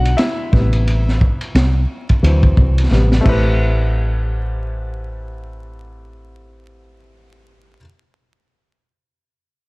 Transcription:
0, 0, Header, 1, 4, 480
1, 0, Start_track
1, 0, Tempo, 681818
1, 611, Time_signature, 4, 2, 24, 8
1, 6821, End_track
2, 0, Start_track
2, 0, Title_t, "Grand piano"
2, 0, Program_c, 0, 0
2, 0, Note_on_c, 0, 50, 54
2, 0, Note_on_c, 0, 54, 46
2, 0, Note_on_c, 0, 56, 57
2, 0, Note_on_c, 0, 66, 76
2, 0, Note_on_c, 0, 78, 96
2, 115, Note_off_c, 0, 66, 0
2, 119, Note_on_c, 0, 76, 85
2, 132, Note_off_c, 0, 78, 0
2, 135, Note_on_c, 0, 64, 72
2, 341, Note_off_c, 0, 50, 0
2, 343, Note_off_c, 0, 54, 0
2, 345, Note_off_c, 0, 56, 0
2, 364, Note_on_c, 0, 48, 51
2, 370, Note_on_c, 0, 55, 45
2, 375, Note_on_c, 0, 59, 60
2, 1059, Note_off_c, 0, 48, 0
2, 1062, Note_off_c, 0, 55, 0
2, 1065, Note_off_c, 0, 59, 0
2, 1568, Note_on_c, 0, 52, 50
2, 1571, Note_on_c, 0, 54, 47
2, 1577, Note_on_c, 0, 60, 54
2, 2017, Note_off_c, 0, 76, 0
2, 2025, Note_off_c, 0, 52, 0
2, 2025, Note_off_c, 0, 64, 0
2, 2027, Note_off_c, 0, 54, 0
2, 2030, Note_off_c, 0, 60, 0
2, 2047, Note_on_c, 0, 48, 50
2, 2051, Note_on_c, 0, 55, 45
2, 2056, Note_on_c, 0, 59, 55
2, 2258, Note_on_c, 0, 57, 73
2, 2273, Note_on_c, 0, 60, 64
2, 2277, Note_off_c, 0, 48, 0
2, 2279, Note_off_c, 0, 55, 0
2, 2281, Note_off_c, 0, 59, 0
2, 2288, Note_on_c, 0, 64, 63
2, 2304, Note_on_c, 0, 67, 65
2, 2317, Note_on_c, 0, 71, 80
2, 5462, Note_off_c, 0, 57, 0
2, 5470, Note_off_c, 0, 60, 0
2, 5477, Note_off_c, 0, 64, 0
2, 5485, Note_off_c, 0, 67, 0
2, 5492, Note_off_c, 0, 71, 0
2, 6821, End_track
3, 0, Start_track
3, 0, Title_t, "Fretless electric bass"
3, 0, Program_c, 1, 35
3, 0, Note_on_c, 1, 35, 83
3, 98, Note_off_c, 1, 35, 0
3, 372, Note_on_c, 1, 33, 87
3, 908, Note_off_c, 1, 33, 0
3, 1089, Note_on_c, 1, 36, 85
3, 1298, Note_off_c, 1, 36, 0
3, 1570, Note_on_c, 1, 38, 87
3, 1778, Note_off_c, 1, 38, 0
3, 1810, Note_on_c, 1, 36, 72
3, 2018, Note_off_c, 1, 36, 0
3, 2049, Note_on_c, 1, 33, 79
3, 2257, Note_off_c, 1, 33, 0
3, 2292, Note_on_c, 1, 33, 82
3, 5479, Note_off_c, 1, 33, 0
3, 6821, End_track
4, 0, Start_track
4, 0, Title_t, "Drums"
4, 37, Note_on_c, 9, 51, 50
4, 108, Note_off_c, 9, 51, 0
4, 125, Note_on_c, 9, 44, 45
4, 125, Note_on_c, 9, 51, 68
4, 135, Note_on_c, 9, 38, 96
4, 196, Note_off_c, 9, 44, 0
4, 196, Note_off_c, 9, 51, 0
4, 205, Note_off_c, 9, 38, 0
4, 372, Note_on_c, 9, 36, 91
4, 384, Note_on_c, 9, 38, 35
4, 443, Note_off_c, 9, 36, 0
4, 454, Note_off_c, 9, 38, 0
4, 512, Note_on_c, 9, 51, 50
4, 582, Note_off_c, 9, 51, 0
4, 616, Note_on_c, 9, 51, 62
4, 687, Note_off_c, 9, 51, 0
4, 764, Note_on_c, 9, 38, 28
4, 834, Note_off_c, 9, 38, 0
4, 854, Note_on_c, 9, 36, 81
4, 924, Note_off_c, 9, 36, 0
4, 992, Note_on_c, 9, 51, 47
4, 1063, Note_off_c, 9, 51, 0
4, 1093, Note_on_c, 9, 44, 51
4, 1093, Note_on_c, 9, 51, 66
4, 1097, Note_on_c, 9, 38, 84
4, 1164, Note_off_c, 9, 44, 0
4, 1164, Note_off_c, 9, 51, 0
4, 1167, Note_off_c, 9, 38, 0
4, 1472, Note_on_c, 9, 51, 41
4, 1477, Note_on_c, 9, 36, 74
4, 1543, Note_off_c, 9, 51, 0
4, 1547, Note_off_c, 9, 36, 0
4, 1579, Note_on_c, 9, 51, 76
4, 1649, Note_off_c, 9, 51, 0
4, 1711, Note_on_c, 9, 36, 83
4, 1781, Note_off_c, 9, 36, 0
4, 1811, Note_on_c, 9, 36, 76
4, 1882, Note_off_c, 9, 36, 0
4, 1957, Note_on_c, 9, 51, 50
4, 2028, Note_off_c, 9, 51, 0
4, 2056, Note_on_c, 9, 38, 49
4, 2126, Note_off_c, 9, 38, 0
4, 2195, Note_on_c, 9, 38, 55
4, 2266, Note_off_c, 9, 38, 0
4, 2292, Note_on_c, 9, 49, 72
4, 2293, Note_on_c, 9, 36, 87
4, 2362, Note_off_c, 9, 49, 0
4, 2363, Note_off_c, 9, 36, 0
4, 6821, End_track
0, 0, End_of_file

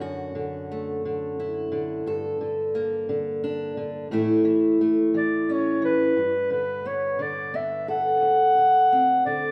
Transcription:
0, 0, Header, 1, 3, 480
1, 0, Start_track
1, 0, Tempo, 684151
1, 18, Time_signature, 3, 2, 24, 8
1, 6676, End_track
2, 0, Start_track
2, 0, Title_t, "Clarinet"
2, 0, Program_c, 0, 71
2, 3628, Note_on_c, 0, 74, 65
2, 3871, Note_on_c, 0, 73, 65
2, 3881, Note_off_c, 0, 74, 0
2, 4097, Note_off_c, 0, 73, 0
2, 4103, Note_on_c, 0, 71, 73
2, 4548, Note_off_c, 0, 71, 0
2, 4573, Note_on_c, 0, 71, 62
2, 4818, Note_on_c, 0, 73, 63
2, 4829, Note_off_c, 0, 71, 0
2, 5063, Note_on_c, 0, 74, 64
2, 5074, Note_off_c, 0, 73, 0
2, 5301, Note_on_c, 0, 76, 63
2, 5312, Note_off_c, 0, 74, 0
2, 5537, Note_off_c, 0, 76, 0
2, 5540, Note_on_c, 0, 78, 83
2, 6472, Note_off_c, 0, 78, 0
2, 6497, Note_on_c, 0, 74, 72
2, 6676, Note_off_c, 0, 74, 0
2, 6676, End_track
3, 0, Start_track
3, 0, Title_t, "Steel-string acoustic guitar"
3, 0, Program_c, 1, 25
3, 0, Note_on_c, 1, 50, 48
3, 0, Note_on_c, 1, 62, 43
3, 2, Note_on_c, 1, 42, 57
3, 9, Note_on_c, 1, 66, 51
3, 238, Note_off_c, 1, 50, 0
3, 246, Note_on_c, 1, 50, 46
3, 502, Note_on_c, 1, 57, 48
3, 729, Note_off_c, 1, 50, 0
3, 739, Note_on_c, 1, 50, 49
3, 977, Note_off_c, 1, 62, 0
3, 979, Note_on_c, 1, 64, 48
3, 1197, Note_off_c, 1, 50, 0
3, 1205, Note_on_c, 1, 50, 47
3, 1414, Note_off_c, 1, 42, 0
3, 1418, Note_off_c, 1, 66, 0
3, 1426, Note_off_c, 1, 64, 0
3, 1448, Note_on_c, 1, 43, 59
3, 1455, Note_on_c, 1, 69, 54
3, 1469, Note_off_c, 1, 57, 0
3, 1682, Note_off_c, 1, 50, 0
3, 1690, Note_on_c, 1, 50, 45
3, 1928, Note_on_c, 1, 58, 47
3, 2160, Note_off_c, 1, 50, 0
3, 2168, Note_on_c, 1, 50, 50
3, 2411, Note_on_c, 1, 62, 47
3, 2638, Note_off_c, 1, 50, 0
3, 2647, Note_on_c, 1, 50, 45
3, 2852, Note_off_c, 1, 43, 0
3, 2854, Note_off_c, 1, 58, 0
3, 2857, Note_off_c, 1, 62, 0
3, 2884, Note_off_c, 1, 50, 0
3, 2885, Note_on_c, 1, 45, 61
3, 2889, Note_on_c, 1, 52, 48
3, 2898, Note_off_c, 1, 69, 0
3, 2898, Note_on_c, 1, 57, 46
3, 2901, Note_on_c, 1, 64, 51
3, 3111, Note_off_c, 1, 52, 0
3, 3119, Note_on_c, 1, 52, 49
3, 3367, Note_off_c, 1, 57, 0
3, 3375, Note_on_c, 1, 57, 44
3, 3600, Note_off_c, 1, 52, 0
3, 3608, Note_on_c, 1, 52, 47
3, 3854, Note_on_c, 1, 61, 44
3, 4073, Note_off_c, 1, 52, 0
3, 4082, Note_on_c, 1, 52, 44
3, 4294, Note_off_c, 1, 52, 0
3, 4301, Note_off_c, 1, 61, 0
3, 4302, Note_off_c, 1, 57, 0
3, 4326, Note_off_c, 1, 45, 0
3, 4327, Note_on_c, 1, 43, 50
3, 4333, Note_off_c, 1, 64, 0
3, 4562, Note_on_c, 1, 50, 41
3, 4809, Note_on_c, 1, 59, 41
3, 5036, Note_off_c, 1, 50, 0
3, 5044, Note_on_c, 1, 50, 46
3, 5280, Note_off_c, 1, 59, 0
3, 5289, Note_on_c, 1, 59, 41
3, 5530, Note_on_c, 1, 69, 43
3, 5743, Note_off_c, 1, 59, 0
3, 5745, Note_off_c, 1, 43, 0
3, 5761, Note_on_c, 1, 38, 51
3, 6011, Note_off_c, 1, 50, 0
3, 6018, Note_on_c, 1, 50, 41
3, 6262, Note_on_c, 1, 60, 44
3, 6490, Note_off_c, 1, 50, 0
3, 6499, Note_on_c, 1, 50, 44
3, 6676, Note_off_c, 1, 38, 0
3, 6676, Note_off_c, 1, 50, 0
3, 6676, Note_off_c, 1, 60, 0
3, 6676, Note_off_c, 1, 69, 0
3, 6676, End_track
0, 0, End_of_file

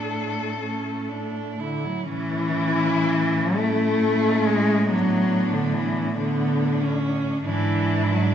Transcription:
0, 0, Header, 1, 5, 480
1, 0, Start_track
1, 0, Key_signature, 3, "major"
1, 0, Tempo, 1008403
1, 989, Tempo, 966184
1, 990, Time_signature, 6, 3, 24, 8
1, 1949, Tempo, 860832
1, 4366, End_track
2, 0, Start_track
2, 0, Title_t, "Cello"
2, 0, Program_c, 0, 42
2, 0, Note_on_c, 0, 69, 57
2, 759, Note_off_c, 0, 69, 0
2, 988, Note_on_c, 0, 64, 79
2, 1701, Note_off_c, 0, 64, 0
2, 1724, Note_on_c, 0, 64, 73
2, 2425, Note_off_c, 0, 64, 0
2, 2447, Note_on_c, 0, 62, 71
2, 3143, Note_off_c, 0, 62, 0
2, 3152, Note_on_c, 0, 62, 63
2, 3857, Note_off_c, 0, 62, 0
2, 3865, Note_on_c, 0, 64, 74
2, 4366, Note_off_c, 0, 64, 0
2, 4366, End_track
3, 0, Start_track
3, 0, Title_t, "Cello"
3, 0, Program_c, 1, 42
3, 0, Note_on_c, 1, 62, 43
3, 274, Note_off_c, 1, 62, 0
3, 277, Note_on_c, 1, 61, 42
3, 517, Note_on_c, 1, 62, 43
3, 524, Note_off_c, 1, 61, 0
3, 760, Note_on_c, 1, 64, 41
3, 767, Note_off_c, 1, 62, 0
3, 989, Note_off_c, 1, 64, 0
3, 991, Note_on_c, 1, 61, 60
3, 1703, Note_off_c, 1, 61, 0
3, 1724, Note_on_c, 1, 61, 63
3, 2425, Note_off_c, 1, 61, 0
3, 2437, Note_on_c, 1, 59, 60
3, 3138, Note_off_c, 1, 59, 0
3, 3154, Note_on_c, 1, 59, 68
3, 3507, Note_on_c, 1, 61, 67
3, 3515, Note_off_c, 1, 59, 0
3, 3867, Note_off_c, 1, 61, 0
3, 3870, Note_on_c, 1, 62, 65
3, 4366, Note_off_c, 1, 62, 0
3, 4366, End_track
4, 0, Start_track
4, 0, Title_t, "Cello"
4, 0, Program_c, 2, 42
4, 0, Note_on_c, 2, 57, 40
4, 743, Note_off_c, 2, 57, 0
4, 763, Note_on_c, 2, 50, 57
4, 881, Note_on_c, 2, 54, 60
4, 888, Note_off_c, 2, 50, 0
4, 989, Note_off_c, 2, 54, 0
4, 992, Note_on_c, 2, 52, 94
4, 1724, Note_on_c, 2, 57, 92
4, 1732, Note_off_c, 2, 52, 0
4, 2198, Note_on_c, 2, 56, 96
4, 2207, Note_off_c, 2, 57, 0
4, 2438, Note_on_c, 2, 54, 87
4, 2446, Note_off_c, 2, 56, 0
4, 2802, Note_on_c, 2, 50, 72
4, 2810, Note_off_c, 2, 54, 0
4, 2913, Note_on_c, 2, 52, 77
4, 2921, Note_off_c, 2, 50, 0
4, 3149, Note_off_c, 2, 52, 0
4, 3153, Note_on_c, 2, 50, 74
4, 3621, Note_off_c, 2, 50, 0
4, 3876, Note_on_c, 2, 52, 86
4, 4242, Note_on_c, 2, 54, 76
4, 4250, Note_off_c, 2, 52, 0
4, 4352, Note_off_c, 2, 54, 0
4, 4366, End_track
5, 0, Start_track
5, 0, Title_t, "Cello"
5, 0, Program_c, 3, 42
5, 0, Note_on_c, 3, 45, 42
5, 867, Note_off_c, 3, 45, 0
5, 991, Note_on_c, 3, 45, 74
5, 3850, Note_off_c, 3, 45, 0
5, 3875, Note_on_c, 3, 44, 71
5, 4366, Note_off_c, 3, 44, 0
5, 4366, End_track
0, 0, End_of_file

